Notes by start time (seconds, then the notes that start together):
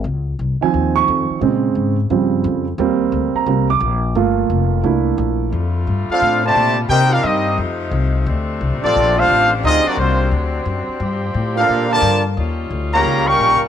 0.04 C#2
0.39 C2
0.61 D#3 F3 C4 G#5, muted upright bass stroke
0.74 D#2
0.96 C#6
1.08 F2
1.29 muted upright bass stroke
1.41 A#2 C#3 G#3 C4
1.75 G#2
2.10 G2 C#3 F3 G3 C4
2.44 F2
2.78 D#2 G3 A#3 C4
3.12 D2
3.34 A#5, muted upright bass stroke
3.46 C2 G3 A#3 C4
3.70 D6
3.80 A#1
4.15 G1 A3 A#3 F4
4.50 F1
4.84 C2 A3 A#3 D4 E4
5.18 A#1
5.50 F2 D3 G3 A3 F4
5.87 G2
6.09 C4 D4 F4 A4 C5 F5, muted upright bass stroke
6.21 A2
6.44 C3 D3 A3 G4 C5 D5 A5
6.55 A#2
6.88 C3 A#3 D#4 G4 A#4 C5 G5
7.11 D4 F4 G4 A#4 F5
7.23 G2 G3 A#3 C4 D#4 G4 A#4 D#5
7.57 F2 F3 A3
7.91 C2
8.26 D2 C3 C4 D4
8.61 C2
8.72 A#1
8.82 A1 F3 A3 C4 D4 F4 A4 D5
8.95 A#1
9.16 A3 D4 F4 A4 C5 F5
9.29 A1
9.63 D2 F#3 C4 D#4 F4 G#4 D#5
9.85 F#3 A#3 C4 D4 F#4 A#4 D5, muted upright bass stroke
9.97 C2 C3 F#3 A#3 C4 F4 F#4 C5
10.31 D2
10.65 F#2
10.88 muted upright bass stroke
11.00 G2 F3 G3 G4
11.34 A2
11.55 A#3 D4 F4 A4 A#4 F5
11.68 A#2
11.89 D3 F3 A#3 F4 D5 A5
11.93 A#4
12.02 G2
12.37 D#2 G3 C#4 D#4 F4
12.70 D2
12.93 C#3 G3 A#3 G4 C#5 F5 A#5
13.04 C#2
13.26 G3 A#3 C#4 A#4 F5 G5 C#6
13.39 A#1
13.61 muted upright bass stroke